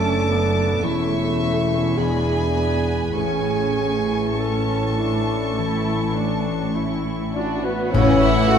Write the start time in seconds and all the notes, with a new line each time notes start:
Already playing: F#1 F#2 A3 C#4 D4 A4 D5 A5 D6
0.28 B3 A4
0.83 E1 E2 A3 C#4 E4 E5 C#6
1.39 A4 C#5 C#6
1.95 E2 E3 G#3 D4 G#4 G#5 B5
2.56 B3 E4 D5 B5
3.16 A1 A2 C#4 G#4 G#5 C#6
3.78 C#4
4.38 C#4 A4 C#5 A5
4.98 D4 E4
5.58 E3 E4
6.16 C#4 D4
6.76 E4 C#5
7.35 D4 E4 F#4 D5
7.65 B3 B4
7.93 A1 A2 C#3 E3 C#4 E4 C#5 E5 F#5, concert bass drum, crash
8.22 E3 E4 E5
8.49 A3 C#4 F#4 F#5